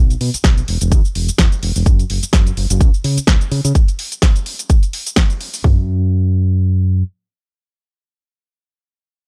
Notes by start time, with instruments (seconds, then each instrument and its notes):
Already playing: fingered electric bass B1
0.10 closed hi-hat, shaker
0.21 fingered electric bass B2, open hi-hat
0.34 muted fingered electric bass stroke, closed hi-hat, shaker
0.44 fingered electric bass B1, kick, snare, closed hi-hat, shaker
0.58 closed hi-hat, shaker
0.68 fingered electric bass E1, open hi-hat
0.81 fingered electric bass E1, closed hi-hat, shaker
0.92 fingered electric bass E2, kick, closed hi-hat, shaker
1.05 shaker
1.15 fingered electric bass E1, open hi-hat
1.29 muted fingered electric bass stroke, closed hi-hat, shaker
1.38 fingered electric bass E2, kick, snare, closed hi-hat, shaker
1.52 closed hi-hat, shaker
1.63 fingered electric bass E1, open hi-hat
1.76 fingered electric bass E1, open hi-hat, shaker
1.86 fingered electric bass F#2, kick, closed hi-hat, shaker
1.99 closed hi-hat, shaker
2.10 fingered electric bass F#1, open hi-hat
2.23 muted fingered electric bass stroke, closed hi-hat, shaker
2.33 fingered electric bass F#2, kick, snare, closed hi-hat, shaker
2.47 closed hi-hat, shaker
2.57 fingered electric bass F#1, open hi-hat
2.70 fingered electric bass F#1, closed hi-hat, shaker
2.81 fingered electric bass C#2, kick, closed hi-hat, shaker
2.94 shaker
3.04 fingered electric bass C#3, open hi-hat
3.17 muted fingered electric bass stroke, closed hi-hat, shaker
3.27 fingered electric bass C#2, kick, snare, closed hi-hat, shaker
3.41 closed hi-hat, shaker
3.51 fingered electric bass C#3, open hi-hat
3.65 fingered electric bass C#3, closed hi-hat, shaker
3.75 kick, closed hi-hat, shaker
3.88 closed hi-hat, shaker
3.99 open hi-hat
4.12 closed hi-hat, shaker
4.22 kick, snare, closed hi-hat, shaker
4.36 closed hi-hat, shaker
4.46 open hi-hat
4.59 closed hi-hat, shaker
4.70 kick, closed hi-hat, shaker
4.83 closed hi-hat, shaker
4.93 open hi-hat
5.06 closed hi-hat, shaker
5.16 kick, snare, closed hi-hat, shaker
5.30 closed hi-hat, shaker
5.41 open hi-hat
5.54 open hi-hat, shaker
5.64 fingered electric bass F#2, kick, floor tom